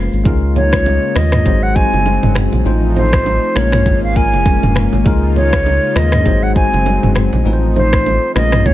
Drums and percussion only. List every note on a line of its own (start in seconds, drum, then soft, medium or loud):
0.13 shaker medium
0.25 kick loud
0.25 low conga medium
0.25 shaker medium
0.55 low bongo medium
0.55 low conga medium
0.55 shaker medium
0.72 finger snap medium
0.72 kick loud
0.72 cross-stick loud
0.72 shaker medium
0.85 high bongo medium
0.85 shaker medium
1.16 finger snap medium
1.16 cross-stick loud
1.16 open hi-hat medium
1.16 low bongo medium
1.16 shaker medium
1.32 finger snap medium
1.32 cross-stick loud
1.32 mid tom loud
1.32 shaker medium
1.46 kick medium
1.46 low conga medium
1.46 shaker medium
1.75 kick medium
1.75 shaker medium
1.93 low bongo medium
1.93 shaker medium
2.05 high bongo medium
2.05 shaker medium
2.23 mid tom loud
2.23 high bongo medium
2.35 finger snap medium
2.35 cross-stick medium
2.35 mid tom medium
2.35 shaker medium
2.53 low bongo medium
2.53 shaker medium
2.66 low conga medium
2.66 shaker medium
2.95 low bongo medium
2.95 low conga medium
2.95 shaker medium
3.12 finger snap medium
3.12 kick loud
3.12 cross-stick loud
3.12 shaker medium
3.26 high bongo medium
3.26 shaker medium
3.56 finger snap medium
3.56 cross-stick loud
3.56 open hi-hat medium
3.56 low bongo medium
3.56 shaker medium
3.72 finger snap medium
3.72 cross-stick medium
3.72 mid tom loud
3.72 shaker medium
3.86 kick medium
3.86 low conga medium
3.86 shaker medium
4.15 kick medium
4.15 shaker medium
4.33 low bongo medium
4.33 shaker medium
4.46 kick loud
4.46 high bongo medium
4.46 shaker medium
4.63 mid tom medium
4.63 high bongo medium
4.75 finger snap medium
4.75 cross-stick medium
4.75 mid tom medium
4.75 shaker medium
4.93 low bongo medium
4.93 shaker medium
5.05 kick loud
5.05 low conga medium
5.05 shaker medium
5.35 low bongo medium
5.35 low conga medium
5.35 shaker medium
5.52 finger snap medium
5.52 kick loud
5.52 cross-stick loud
5.52 shaker medium
5.66 high bongo medium
5.66 shaker medium
5.96 finger snap medium
5.96 cross-stick loud
5.96 open hi-hat medium
5.96 low bongo medium
5.96 shaker medium
6.12 finger snap medium
6.12 cross-stick loud
6.12 mid tom loud
6.12 shaker medium
6.26 kick medium
6.26 low conga medium
6.26 shaker medium
6.55 kick medium
6.55 shaker medium
6.73 low bongo medium
6.73 shaker medium
6.86 high bongo medium
6.86 shaker medium
7.03 mid tom medium
7.03 high bongo medium
7.15 finger snap medium
7.15 cross-stick loud
7.15 mid tom medium
7.15 shaker medium
7.33 low bongo medium
7.33 shaker medium
7.45 low conga medium
7.45 shaker medium
7.75 low bongo medium
7.75 low conga medium
7.75 shaker medium
7.92 finger snap medium
7.92 kick loud
7.92 cross-stick loud
7.92 shaker medium
8.05 high bongo medium
8.05 shaker medium
8.36 finger snap medium
8.36 cross-stick loud
8.36 open hi-hat medium
8.36 low bongo medium
8.36 shaker medium
8.52 finger snap medium
8.52 cross-stick medium
8.52 mid tom loud
8.52 shaker medium
8.66 kick medium
8.66 low conga medium
8.66 shaker medium